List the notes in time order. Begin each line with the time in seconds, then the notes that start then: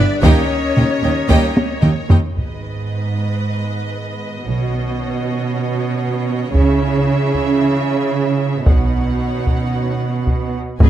Already playing: B3 D4 G4 B4 D5
0.22 D#2 G3 A#3 C#4 D#4 G4 A#4 C#5 D#5 G5, taiko
0.77 D#2 A#3 D#4 D#5 G5, taiko low-mid
1.03 D#2 A#3 D#4 D#5 G5
1.28 D#2 G3 A#3 D#4 D#5 G5, taiko
1.57 taiko high
1.83 D#2 A#3 D#4 D#5 G5, taiko mid
2.09 D#2 A#3 D#4 D#5 G5, taiko low
2.36 G#1 G#2 D#3 B3 B4 D#5, taiko
4.46 B1 B2 C#4 F#4 C#5
6.55 C#2 C#3 E3 E4 E5, taiko
7.34 taiko
8.66 B1 B2 D#3 C#4 D#4 C#5 F#5, taiko
9.47 taiko
10.27 taiko
10.80 G#1 G#2 B3 G#4 B4 D#5 G#5, taiko